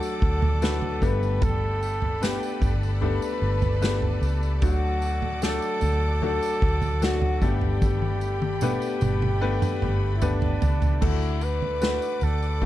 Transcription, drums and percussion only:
0.03 tambourine medium
0.22 kick medium
0.42 floor tom medium
0.62 snare loud
0.62 tambourine medium
0.82 floor tom medium
1.02 kick medium
1.02 tambourine soft
1.23 tambourine soft
1.42 kick loud
1.42 floor tom loud
1.42 tambourine medium
1.83 tambourine soft
2.02 floor tom medium
2.23 snare loud
2.23 tambourine medium
2.43 tambourine medium
2.62 kick loud
2.62 floor tom medium
2.62 tambourine medium
2.83 tambourine soft
3.02 floor tom medium
3.22 tambourine medium
3.62 floor tom medium
3.62 tambourine soft
3.82 snare loud
3.82 tambourine medium
4.02 floor tom medium
4.23 tambourine soft
4.43 tambourine soft
4.62 kick loud
4.62 floor tom loud
4.62 tambourine medium
5.02 tambourine medium
5.22 floor tom medium
5.42 snare loud
5.42 tambourine medium
5.62 tambourine medium
5.81 floor tom medium
5.81 tambourine medium
6.22 floor tom medium
6.42 tambourine medium
6.62 kick medium
6.82 floor tom medium
6.82 tambourine soft
7.02 snare loud
7.02 tambourine medium
7.22 floor tom medium
7.42 kick medium
7.42 tambourine soft
7.61 floor tom medium
7.82 kick loud
7.82 high tom medium
7.82 tambourine medium
8.02 high tom medium
8.21 tambourine soft
8.42 high tom medium
8.61 mid tom medium
8.61 tambourine medium
8.82 tambourine medium
9.01 mid tom medium
9.01 tambourine medium
9.22 mid tom medium
9.62 mid tom medium
9.62 tambourine medium
9.82 mid tom medium
10.22 floor tom loud
10.22 tambourine medium
10.42 floor tom medium
10.62 floor tom loud
10.62 tambourine soft
10.82 floor tom medium
10.82 tambourine soft
11.02 kick loud
11.02 floor tom loud
11.02 crash medium
11.02 tambourine medium
11.22 tambourine soft
11.41 tambourine soft
11.62 floor tom medium
11.82 snare loud
11.82 tambourine medium
12.02 tambourine medium
12.21 floor tom medium
12.21 tambourine soft
12.42 tambourine soft
12.62 kick medium
12.62 floor tom medium

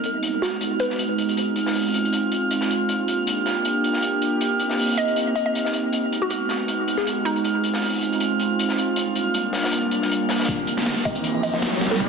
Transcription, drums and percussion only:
0.04 closed hi-hat medium
0.23 closed hi-hat medium
0.42 snare medium
0.42 closed hi-hat medium
0.61 closed hi-hat medium
0.80 closed hi-hat medium
0.90 snare soft
0.99 closed hi-hat medium
1.18 closed hi-hat medium
1.29 closed hi-hat soft
1.37 closed hi-hat medium
1.56 closed hi-hat medium
1.66 snare soft
1.75 open hi-hat medium
1.94 closed hi-hat medium
2.05 closed hi-hat soft
2.13 closed hi-hat medium
2.32 closed hi-hat medium
2.51 closed hi-hat medium
2.61 snare soft
2.71 closed hi-hat medium
2.89 closed hi-hat medium
3.08 closed hi-hat medium
3.27 closed hi-hat medium
3.46 snare soft
3.46 closed hi-hat medium
3.65 closed hi-hat medium
3.84 closed hi-hat medium
3.93 snare soft
4.02 closed hi-hat medium
4.22 closed hi-hat medium
4.41 closed hi-hat medium
4.60 closed hi-hat medium
4.70 snare soft
4.79 open hi-hat medium
4.98 closed hi-hat medium
5.08 closed hi-hat soft
5.16 closed hi-hat medium
5.35 closed hi-hat medium
5.55 closed hi-hat medium
5.65 snare soft
5.73 closed hi-hat medium
5.93 closed hi-hat medium
6.13 closed hi-hat medium
6.30 closed hi-hat medium
6.49 snare medium
6.49 closed hi-hat medium
6.68 closed hi-hat medium
6.88 closed hi-hat medium
6.98 snare soft
7.07 closed hi-hat medium
7.26 closed hi-hat medium
7.36 closed hi-hat soft
7.45 closed hi-hat medium
7.64 closed hi-hat medium
7.74 snare soft
7.82 open hi-hat medium
8.02 closed hi-hat medium
8.13 closed hi-hat soft
8.20 closed hi-hat medium
8.39 closed hi-hat medium
8.59 closed hi-hat medium
8.69 snare soft
8.78 closed hi-hat medium
8.96 closed hi-hat medium
9.16 closed hi-hat medium
9.34 closed hi-hat medium
9.53 snare medium
9.53 open hi-hat medium
9.63 snare loud
9.63 open hi-hat medium
9.72 closed hi-hat medium
9.91 closed hi-hat medium
10.02 snare soft
10.11 closed hi-hat medium
10.29 snare loud
10.29 open hi-hat medium
10.39 snare medium
10.39 open hi-hat medium
10.43 snare medium
10.43 open hi-hat medium
10.48 kick loud
10.48 closed hi-hat medium
10.67 closed hi-hat medium
10.77 snare soft
10.86 snare loud
10.86 closed hi-hat medium
10.86 open hi-hat medium
10.97 snare soft
11.05 kick medium
11.05 closed hi-hat medium
11.15 closed hi-hat soft
11.24 closed hi-hat medium
11.43 closed hi-hat medium
11.43 open hi-hat medium
11.54 snare soft
11.62 snare loud
11.62 closed hi-hat medium
11.72 snare soft
11.81 snare medium
11.81 closed hi-hat medium
11.86 snare medium
11.86 closed hi-hat medium
11.92 snare medium
11.92 closed hi-hat medium
11.96 snare medium
11.96 closed hi-hat medium
12.00 kick loud
12.00 closed hi-hat medium

